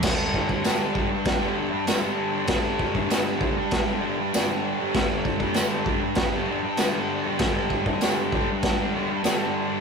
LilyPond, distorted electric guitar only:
\new Staff \with { instrumentName = "Distorted electric guitar" } { \clef bass \time 4/4 \key c \dorian \tempo 4 = 98 <g, d g>8. <d g>16 <g, d g>8 <g, d g>8. <d g>16 <g, d g>8 <g, d g>16 <d g>8 <d g>16 | <g, d g>8. <d g>16 <g, d g>8 <g, d g>8. <d g>16 <g, d g>8 <g, d g>16 <d g>8 <d g>16 | <g, d g>8. <d g>16 <g, d g>8 <g, d g>8. <d g>16 <g, d g>8 <g, d g>16 <d g>8 <d g>16 | <g, d g>8. <d g>16 <g, d g>8 <g, d g>8. <d g>16 <g, d g>8 <g, d g>16 <d g>8 <d g>16 | }